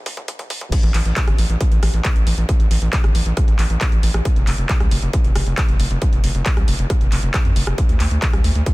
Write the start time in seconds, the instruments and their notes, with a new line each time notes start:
0.06 kick, open hi-hat
0.17 kick, closed hi-hat
0.28 kick, closed hi-hat
0.39 kick, closed hi-hat
0.50 kick, open hi-hat
0.61 kick, closed hi-hat
0.72 kick, closed hi-hat, crash
0.83 analog synth bass A1, closed hi-hat
0.94 analog synth bass A1, clap, open hi-hat
1.05 analog synth bass A1, closed hi-hat
1.16 kick, clap, closed hi-hat
1.28 analog synth bass G1, cross-stick, closed hi-hat
1.38 analog synth bass A1, open hi-hat
1.50 analog synth bass A1, closed hi-hat
1.61 kick, closed hi-hat
1.72 analog synth bass A1, closed hi-hat
1.83 analog synth bass A1, cross-stick, open hi-hat
1.94 analog synth bass A1, closed hi-hat
2.05 kick, clap, closed hi-hat
2.16 analog synth bass A1, closed hi-hat
2.27 analog synth bass A1, open hi-hat
2.38 analog synth bass A1, closed hi-hat
2.49 kick, closed hi-hat
2.60 analog synth bass A1, closed hi-hat
2.71 analog synth bass A1, open hi-hat
2.82 analog synth bass A1, closed hi-hat
2.93 kick, clap, closed hi-hat
3.04 analog synth bass G1, cross-stick, closed hi-hat
3.15 analog synth bass A1, open hi-hat
3.26 analog synth bass A1, closed hi-hat
3.37 kick, cross-stick, closed hi-hat
3.48 analog synth bass A1, closed hi-hat
3.59 analog synth bass A1, clap, open hi-hat
3.70 analog synth bass A1, closed hi-hat
3.81 kick, clap, closed hi-hat
3.92 analog synth bass A1, closed hi-hat
4.03 analog synth bass A1, open hi-hat
4.14 analog synth bass A1, cross-stick, closed hi-hat
4.25 kick, closed hi-hat
4.36 analog synth bass F1, closed hi-hat
4.47 analog synth bass F1, clap, open hi-hat
4.58 analog synth bass F1, closed hi-hat
4.69 kick, clap, closed hi-hat
4.80 analog synth bass C2, cross-stick, closed hi-hat
4.91 analog synth bass F1, open hi-hat
5.02 analog synth bass F1, closed hi-hat
5.13 kick, closed hi-hat
5.24 analog synth bass F1, closed hi-hat
5.35 analog synth bass F1, cross-stick, open hi-hat
5.47 analog synth bass F1, closed hi-hat
5.58 kick, clap, closed hi-hat
5.69 analog synth bass F1, closed hi-hat
5.80 analog synth bass F1, open hi-hat
5.91 analog synth bass F1, closed hi-hat
6.02 kick, closed hi-hat
6.13 analog synth bass F1, closed hi-hat
6.24 analog synth bass F1, open hi-hat
6.35 analog synth bass F1, closed hi-hat
6.46 kick, clap, closed hi-hat
6.57 analog synth bass C2, cross-stick, closed hi-hat
6.68 analog synth bass F1, open hi-hat
6.79 analog synth bass F1, closed hi-hat
6.90 kick, cross-stick, closed hi-hat
7.01 analog synth bass F1, closed hi-hat
7.12 analog synth bass F1, clap, open hi-hat
7.23 analog synth bass F1, closed hi-hat
7.34 kick, clap, closed hi-hat
7.45 analog synth bass F2, closed hi-hat
7.56 analog synth bass F1, open hi-hat
7.67 analog synth bass F1, cross-stick
7.78 kick, closed hi-hat
7.89 analog synth bass D2, closed hi-hat
8.00 analog synth bass D2, clap, open hi-hat
8.11 analog synth bass D2, closed hi-hat
8.22 kick, clap, closed hi-hat
8.33 analog synth bass C2, cross-stick, closed hi-hat
8.44 analog synth bass D2, open hi-hat
8.55 analog synth bass D2, closed hi-hat
8.66 kick, closed hi-hat